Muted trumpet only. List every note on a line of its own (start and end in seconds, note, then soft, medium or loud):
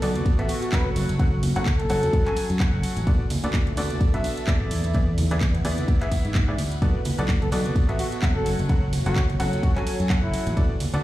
0.02 0.11 A4 medium
0.49 0.58 F#4 medium
0.62 0.69 F#4 medium
0.72 0.90 B4 medium
1.79 2.45 A4 loud
7.42 7.49 A4 medium
7.52 7.61 A4 medium
7.99 8.08 F#4 medium
8.12 8.19 F#4 medium
8.36 8.51 A4 medium
9.06 9.22 F#4 medium
9.63 9.72 F#4 medium
9.77 9.83 F#4 medium
10.23 10.62 E4 medium